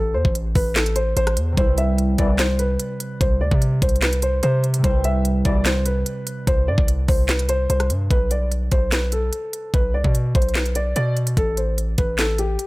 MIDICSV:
0, 0, Header, 1, 6, 480
1, 0, Start_track
1, 0, Tempo, 408163
1, 1852, Time_signature, 4, 2, 24, 8
1, 14898, End_track
2, 0, Start_track
2, 0, Title_t, "Grand piano"
2, 0, Program_c, 0, 0
2, 0, Note_on_c, 0, 69, 86
2, 157, Note_off_c, 0, 69, 0
2, 168, Note_on_c, 0, 72, 81
2, 397, Note_off_c, 0, 72, 0
2, 653, Note_on_c, 0, 71, 81
2, 879, Note_off_c, 0, 71, 0
2, 887, Note_on_c, 0, 69, 73
2, 1116, Note_off_c, 0, 69, 0
2, 1126, Note_on_c, 0, 72, 88
2, 1355, Note_off_c, 0, 72, 0
2, 1372, Note_on_c, 0, 72, 105
2, 1599, Note_off_c, 0, 72, 0
2, 1855, Note_on_c, 0, 72, 95
2, 2080, Note_off_c, 0, 72, 0
2, 2093, Note_on_c, 0, 76, 78
2, 2319, Note_off_c, 0, 76, 0
2, 2571, Note_on_c, 0, 74, 81
2, 2798, Note_off_c, 0, 74, 0
2, 2814, Note_on_c, 0, 72, 87
2, 3040, Note_off_c, 0, 72, 0
2, 3050, Note_on_c, 0, 71, 82
2, 3728, Note_off_c, 0, 71, 0
2, 3770, Note_on_c, 0, 72, 85
2, 3997, Note_off_c, 0, 72, 0
2, 4009, Note_on_c, 0, 74, 79
2, 4237, Note_off_c, 0, 74, 0
2, 4495, Note_on_c, 0, 72, 77
2, 4720, Note_off_c, 0, 72, 0
2, 4726, Note_on_c, 0, 71, 76
2, 4955, Note_off_c, 0, 71, 0
2, 4973, Note_on_c, 0, 72, 89
2, 5192, Note_off_c, 0, 72, 0
2, 5209, Note_on_c, 0, 72, 102
2, 5437, Note_off_c, 0, 72, 0
2, 5692, Note_on_c, 0, 72, 99
2, 5919, Note_off_c, 0, 72, 0
2, 5936, Note_on_c, 0, 76, 83
2, 6161, Note_off_c, 0, 76, 0
2, 6415, Note_on_c, 0, 74, 89
2, 6640, Note_off_c, 0, 74, 0
2, 6653, Note_on_c, 0, 72, 87
2, 6879, Note_off_c, 0, 72, 0
2, 6889, Note_on_c, 0, 71, 80
2, 7567, Note_off_c, 0, 71, 0
2, 7613, Note_on_c, 0, 72, 84
2, 7839, Note_off_c, 0, 72, 0
2, 7856, Note_on_c, 0, 74, 82
2, 8081, Note_off_c, 0, 74, 0
2, 8329, Note_on_c, 0, 72, 78
2, 8557, Note_off_c, 0, 72, 0
2, 8573, Note_on_c, 0, 71, 73
2, 8799, Note_off_c, 0, 71, 0
2, 8811, Note_on_c, 0, 72, 94
2, 9036, Note_off_c, 0, 72, 0
2, 9053, Note_on_c, 0, 72, 93
2, 9279, Note_off_c, 0, 72, 0
2, 9531, Note_on_c, 0, 71, 90
2, 9758, Note_off_c, 0, 71, 0
2, 9775, Note_on_c, 0, 74, 78
2, 10000, Note_off_c, 0, 74, 0
2, 10252, Note_on_c, 0, 72, 82
2, 10479, Note_off_c, 0, 72, 0
2, 10493, Note_on_c, 0, 71, 82
2, 10719, Note_off_c, 0, 71, 0
2, 10731, Note_on_c, 0, 69, 77
2, 11408, Note_off_c, 0, 69, 0
2, 11453, Note_on_c, 0, 71, 84
2, 11679, Note_off_c, 0, 71, 0
2, 11691, Note_on_c, 0, 74, 79
2, 11918, Note_off_c, 0, 74, 0
2, 12175, Note_on_c, 0, 72, 84
2, 12400, Note_off_c, 0, 72, 0
2, 12411, Note_on_c, 0, 71, 70
2, 12638, Note_off_c, 0, 71, 0
2, 12650, Note_on_c, 0, 74, 85
2, 12872, Note_off_c, 0, 74, 0
2, 12890, Note_on_c, 0, 74, 102
2, 13118, Note_off_c, 0, 74, 0
2, 13377, Note_on_c, 0, 69, 94
2, 13601, Note_off_c, 0, 69, 0
2, 13611, Note_on_c, 0, 72, 68
2, 13838, Note_off_c, 0, 72, 0
2, 14088, Note_on_c, 0, 71, 84
2, 14316, Note_off_c, 0, 71, 0
2, 14332, Note_on_c, 0, 69, 88
2, 14559, Note_off_c, 0, 69, 0
2, 14571, Note_on_c, 0, 67, 76
2, 14898, Note_off_c, 0, 67, 0
2, 14898, End_track
3, 0, Start_track
3, 0, Title_t, "Harp"
3, 0, Program_c, 1, 46
3, 1790, Note_on_c, 1, 48, 69
3, 1835, Note_on_c, 1, 55, 68
3, 1879, Note_on_c, 1, 64, 65
3, 1924, Note_on_c, 1, 71, 75
3, 5611, Note_off_c, 1, 48, 0
3, 5625, Note_on_c, 1, 48, 69
3, 5656, Note_off_c, 1, 55, 0
3, 5659, Note_off_c, 1, 64, 0
3, 5670, Note_on_c, 1, 55, 66
3, 5696, Note_off_c, 1, 71, 0
3, 5715, Note_on_c, 1, 64, 59
3, 5759, Note_on_c, 1, 71, 80
3, 9496, Note_off_c, 1, 64, 0
3, 9519, Note_off_c, 1, 71, 0
3, 9591, Note_off_c, 1, 48, 0
3, 9591, Note_off_c, 1, 55, 0
3, 14898, End_track
4, 0, Start_track
4, 0, Title_t, "Brass ensemble"
4, 0, Program_c, 2, 61
4, 2572, Note_on_c, 2, 36, 89
4, 2572, Note_on_c, 2, 47, 96
4, 2572, Note_on_c, 2, 52, 106
4, 2914, Note_off_c, 2, 36, 0
4, 2914, Note_off_c, 2, 47, 0
4, 2914, Note_off_c, 2, 52, 0
4, 6411, Note_on_c, 2, 36, 98
4, 6411, Note_on_c, 2, 47, 94
4, 6411, Note_on_c, 2, 52, 107
4, 6754, Note_off_c, 2, 36, 0
4, 6754, Note_off_c, 2, 47, 0
4, 6754, Note_off_c, 2, 52, 0
4, 14898, End_track
5, 0, Start_track
5, 0, Title_t, "808-style bass"
5, 0, Program_c, 3, 38
5, 0, Note_on_c, 3, 33, 110
5, 172, Note_on_c, 3, 40, 104
5, 189, Note_off_c, 3, 33, 0
5, 286, Note_off_c, 3, 40, 0
5, 293, Note_on_c, 3, 33, 100
5, 638, Note_off_c, 3, 33, 0
5, 653, Note_on_c, 3, 33, 106
5, 1344, Note_off_c, 3, 33, 0
5, 1371, Note_on_c, 3, 33, 106
5, 1611, Note_on_c, 3, 40, 102
5, 1628, Note_off_c, 3, 33, 0
5, 1839, Note_off_c, 3, 40, 0
5, 1851, Note_on_c, 3, 36, 114
5, 2543, Note_off_c, 3, 36, 0
5, 2572, Note_on_c, 3, 36, 107
5, 3263, Note_off_c, 3, 36, 0
5, 3772, Note_on_c, 3, 36, 108
5, 4011, Note_on_c, 3, 38, 101
5, 4029, Note_off_c, 3, 36, 0
5, 4126, Note_off_c, 3, 38, 0
5, 4133, Note_on_c, 3, 48, 100
5, 4478, Note_off_c, 3, 48, 0
5, 4492, Note_on_c, 3, 36, 102
5, 5183, Note_off_c, 3, 36, 0
5, 5211, Note_on_c, 3, 48, 110
5, 5672, Note_off_c, 3, 48, 0
5, 5692, Note_on_c, 3, 36, 115
5, 6383, Note_off_c, 3, 36, 0
5, 6413, Note_on_c, 3, 36, 105
5, 7104, Note_off_c, 3, 36, 0
5, 7612, Note_on_c, 3, 36, 110
5, 7852, Note_on_c, 3, 43, 102
5, 7869, Note_off_c, 3, 36, 0
5, 7966, Note_off_c, 3, 43, 0
5, 7973, Note_on_c, 3, 36, 103
5, 8318, Note_off_c, 3, 36, 0
5, 8333, Note_on_c, 3, 36, 105
5, 9023, Note_off_c, 3, 36, 0
5, 9051, Note_on_c, 3, 36, 106
5, 9291, Note_on_c, 3, 43, 104
5, 9309, Note_off_c, 3, 36, 0
5, 9519, Note_off_c, 3, 43, 0
5, 9532, Note_on_c, 3, 35, 115
5, 10223, Note_off_c, 3, 35, 0
5, 10252, Note_on_c, 3, 35, 105
5, 10943, Note_off_c, 3, 35, 0
5, 11451, Note_on_c, 3, 35, 108
5, 11691, Note_on_c, 3, 36, 100
5, 11709, Note_off_c, 3, 35, 0
5, 11806, Note_off_c, 3, 36, 0
5, 11812, Note_on_c, 3, 47, 103
5, 12157, Note_off_c, 3, 47, 0
5, 12172, Note_on_c, 3, 35, 103
5, 12863, Note_off_c, 3, 35, 0
5, 12892, Note_on_c, 3, 47, 102
5, 13353, Note_off_c, 3, 47, 0
5, 13371, Note_on_c, 3, 33, 114
5, 14063, Note_off_c, 3, 33, 0
5, 14092, Note_on_c, 3, 33, 104
5, 14783, Note_off_c, 3, 33, 0
5, 14898, End_track
6, 0, Start_track
6, 0, Title_t, "Drums"
6, 293, Note_on_c, 9, 36, 98
6, 410, Note_off_c, 9, 36, 0
6, 414, Note_on_c, 9, 42, 77
6, 531, Note_off_c, 9, 42, 0
6, 650, Note_on_c, 9, 46, 55
6, 653, Note_on_c, 9, 36, 97
6, 768, Note_off_c, 9, 46, 0
6, 770, Note_off_c, 9, 36, 0
6, 892, Note_on_c, 9, 39, 99
6, 893, Note_on_c, 9, 38, 121
6, 893, Note_on_c, 9, 42, 40
6, 1010, Note_off_c, 9, 38, 0
6, 1010, Note_off_c, 9, 39, 0
6, 1011, Note_off_c, 9, 42, 0
6, 1013, Note_on_c, 9, 42, 65
6, 1126, Note_off_c, 9, 42, 0
6, 1126, Note_on_c, 9, 42, 79
6, 1244, Note_off_c, 9, 42, 0
6, 1372, Note_on_c, 9, 42, 79
6, 1489, Note_off_c, 9, 42, 0
6, 1493, Note_on_c, 9, 37, 96
6, 1493, Note_on_c, 9, 42, 48
6, 1609, Note_off_c, 9, 42, 0
6, 1609, Note_on_c, 9, 42, 86
6, 1611, Note_off_c, 9, 37, 0
6, 1726, Note_off_c, 9, 42, 0
6, 1852, Note_on_c, 9, 36, 115
6, 1853, Note_on_c, 9, 42, 74
6, 1969, Note_off_c, 9, 36, 0
6, 1970, Note_off_c, 9, 42, 0
6, 2089, Note_on_c, 9, 42, 67
6, 2207, Note_off_c, 9, 42, 0
6, 2333, Note_on_c, 9, 42, 72
6, 2451, Note_off_c, 9, 42, 0
6, 2568, Note_on_c, 9, 42, 72
6, 2572, Note_on_c, 9, 36, 94
6, 2686, Note_off_c, 9, 42, 0
6, 2690, Note_off_c, 9, 36, 0
6, 2811, Note_on_c, 9, 38, 122
6, 2811, Note_on_c, 9, 39, 98
6, 2817, Note_on_c, 9, 42, 71
6, 2928, Note_off_c, 9, 39, 0
6, 2929, Note_off_c, 9, 38, 0
6, 2934, Note_off_c, 9, 42, 0
6, 3046, Note_on_c, 9, 42, 79
6, 3164, Note_off_c, 9, 42, 0
6, 3287, Note_on_c, 9, 42, 81
6, 3405, Note_off_c, 9, 42, 0
6, 3530, Note_on_c, 9, 42, 86
6, 3648, Note_off_c, 9, 42, 0
6, 3772, Note_on_c, 9, 36, 112
6, 3773, Note_on_c, 9, 42, 72
6, 3890, Note_off_c, 9, 36, 0
6, 3891, Note_off_c, 9, 42, 0
6, 4133, Note_on_c, 9, 36, 98
6, 4250, Note_off_c, 9, 36, 0
6, 4254, Note_on_c, 9, 42, 80
6, 4372, Note_off_c, 9, 42, 0
6, 4492, Note_on_c, 9, 42, 74
6, 4493, Note_on_c, 9, 36, 98
6, 4573, Note_off_c, 9, 42, 0
6, 4573, Note_on_c, 9, 42, 57
6, 4610, Note_off_c, 9, 36, 0
6, 4653, Note_off_c, 9, 42, 0
6, 4653, Note_on_c, 9, 42, 43
6, 4731, Note_on_c, 9, 38, 122
6, 4731, Note_on_c, 9, 39, 99
6, 4732, Note_off_c, 9, 42, 0
6, 4732, Note_on_c, 9, 42, 42
6, 4848, Note_off_c, 9, 39, 0
6, 4849, Note_off_c, 9, 38, 0
6, 4849, Note_off_c, 9, 42, 0
6, 4853, Note_on_c, 9, 42, 68
6, 4966, Note_off_c, 9, 42, 0
6, 4966, Note_on_c, 9, 42, 81
6, 5084, Note_off_c, 9, 42, 0
6, 5208, Note_on_c, 9, 42, 80
6, 5325, Note_off_c, 9, 42, 0
6, 5453, Note_on_c, 9, 42, 53
6, 5571, Note_off_c, 9, 42, 0
6, 5572, Note_on_c, 9, 42, 88
6, 5690, Note_off_c, 9, 42, 0
6, 5692, Note_on_c, 9, 36, 112
6, 5693, Note_on_c, 9, 42, 73
6, 5810, Note_off_c, 9, 36, 0
6, 5810, Note_off_c, 9, 42, 0
6, 5930, Note_on_c, 9, 42, 66
6, 6047, Note_off_c, 9, 42, 0
6, 6174, Note_on_c, 9, 42, 76
6, 6291, Note_off_c, 9, 42, 0
6, 6409, Note_on_c, 9, 42, 73
6, 6412, Note_on_c, 9, 36, 98
6, 6527, Note_off_c, 9, 42, 0
6, 6530, Note_off_c, 9, 36, 0
6, 6651, Note_on_c, 9, 38, 117
6, 6651, Note_on_c, 9, 39, 98
6, 6657, Note_on_c, 9, 42, 73
6, 6768, Note_off_c, 9, 39, 0
6, 6769, Note_off_c, 9, 38, 0
6, 6775, Note_off_c, 9, 42, 0
6, 6886, Note_on_c, 9, 42, 79
6, 7004, Note_off_c, 9, 42, 0
6, 7128, Note_on_c, 9, 42, 78
6, 7246, Note_off_c, 9, 42, 0
6, 7371, Note_on_c, 9, 42, 89
6, 7488, Note_off_c, 9, 42, 0
6, 7612, Note_on_c, 9, 36, 111
6, 7613, Note_on_c, 9, 42, 73
6, 7730, Note_off_c, 9, 36, 0
6, 7730, Note_off_c, 9, 42, 0
6, 7972, Note_on_c, 9, 36, 96
6, 8090, Note_off_c, 9, 36, 0
6, 8093, Note_on_c, 9, 42, 82
6, 8211, Note_off_c, 9, 42, 0
6, 8329, Note_on_c, 9, 46, 54
6, 8333, Note_on_c, 9, 36, 99
6, 8447, Note_off_c, 9, 46, 0
6, 8450, Note_off_c, 9, 36, 0
6, 8570, Note_on_c, 9, 39, 94
6, 8571, Note_on_c, 9, 38, 120
6, 8572, Note_on_c, 9, 42, 40
6, 8688, Note_off_c, 9, 39, 0
6, 8689, Note_off_c, 9, 38, 0
6, 8689, Note_off_c, 9, 42, 0
6, 8693, Note_on_c, 9, 42, 66
6, 8805, Note_off_c, 9, 42, 0
6, 8805, Note_on_c, 9, 42, 82
6, 8923, Note_off_c, 9, 42, 0
6, 9052, Note_on_c, 9, 42, 83
6, 9170, Note_off_c, 9, 42, 0
6, 9173, Note_on_c, 9, 37, 95
6, 9173, Note_on_c, 9, 42, 48
6, 9290, Note_off_c, 9, 42, 0
6, 9290, Note_on_c, 9, 42, 85
6, 9291, Note_off_c, 9, 37, 0
6, 9408, Note_off_c, 9, 42, 0
6, 9532, Note_on_c, 9, 36, 109
6, 9533, Note_on_c, 9, 42, 70
6, 9650, Note_off_c, 9, 36, 0
6, 9650, Note_off_c, 9, 42, 0
6, 9770, Note_on_c, 9, 42, 67
6, 9887, Note_off_c, 9, 42, 0
6, 10014, Note_on_c, 9, 42, 72
6, 10132, Note_off_c, 9, 42, 0
6, 10249, Note_on_c, 9, 42, 69
6, 10252, Note_on_c, 9, 36, 97
6, 10367, Note_off_c, 9, 42, 0
6, 10370, Note_off_c, 9, 36, 0
6, 10491, Note_on_c, 9, 39, 90
6, 10492, Note_on_c, 9, 38, 113
6, 10498, Note_on_c, 9, 42, 68
6, 10609, Note_off_c, 9, 39, 0
6, 10610, Note_off_c, 9, 38, 0
6, 10615, Note_off_c, 9, 42, 0
6, 10726, Note_on_c, 9, 42, 77
6, 10844, Note_off_c, 9, 42, 0
6, 10967, Note_on_c, 9, 42, 75
6, 11085, Note_off_c, 9, 42, 0
6, 11210, Note_on_c, 9, 42, 83
6, 11328, Note_off_c, 9, 42, 0
6, 11451, Note_on_c, 9, 36, 110
6, 11452, Note_on_c, 9, 42, 70
6, 11569, Note_off_c, 9, 36, 0
6, 11569, Note_off_c, 9, 42, 0
6, 11812, Note_on_c, 9, 36, 96
6, 11929, Note_off_c, 9, 36, 0
6, 11933, Note_on_c, 9, 42, 77
6, 12050, Note_off_c, 9, 42, 0
6, 12171, Note_on_c, 9, 36, 94
6, 12171, Note_on_c, 9, 42, 72
6, 12251, Note_off_c, 9, 42, 0
6, 12251, Note_on_c, 9, 42, 55
6, 12289, Note_off_c, 9, 36, 0
6, 12331, Note_off_c, 9, 42, 0
6, 12331, Note_on_c, 9, 42, 40
6, 12410, Note_on_c, 9, 39, 95
6, 12411, Note_off_c, 9, 42, 0
6, 12411, Note_on_c, 9, 38, 115
6, 12411, Note_on_c, 9, 42, 38
6, 12528, Note_off_c, 9, 39, 0
6, 12529, Note_off_c, 9, 38, 0
6, 12529, Note_off_c, 9, 42, 0
6, 12532, Note_on_c, 9, 42, 65
6, 12645, Note_off_c, 9, 42, 0
6, 12645, Note_on_c, 9, 42, 76
6, 12763, Note_off_c, 9, 42, 0
6, 12887, Note_on_c, 9, 42, 75
6, 13005, Note_off_c, 9, 42, 0
6, 13132, Note_on_c, 9, 42, 53
6, 13249, Note_off_c, 9, 42, 0
6, 13251, Note_on_c, 9, 42, 86
6, 13369, Note_off_c, 9, 42, 0
6, 13371, Note_on_c, 9, 36, 104
6, 13372, Note_on_c, 9, 42, 69
6, 13489, Note_off_c, 9, 36, 0
6, 13490, Note_off_c, 9, 42, 0
6, 13610, Note_on_c, 9, 42, 64
6, 13727, Note_off_c, 9, 42, 0
6, 13853, Note_on_c, 9, 42, 70
6, 13971, Note_off_c, 9, 42, 0
6, 14088, Note_on_c, 9, 42, 71
6, 14092, Note_on_c, 9, 36, 95
6, 14206, Note_off_c, 9, 42, 0
6, 14209, Note_off_c, 9, 36, 0
6, 14331, Note_on_c, 9, 38, 116
6, 14331, Note_on_c, 9, 39, 95
6, 14337, Note_on_c, 9, 42, 68
6, 14448, Note_off_c, 9, 39, 0
6, 14449, Note_off_c, 9, 38, 0
6, 14455, Note_off_c, 9, 42, 0
6, 14564, Note_on_c, 9, 42, 79
6, 14682, Note_off_c, 9, 42, 0
6, 14806, Note_on_c, 9, 42, 77
6, 14898, Note_off_c, 9, 42, 0
6, 14898, End_track
0, 0, End_of_file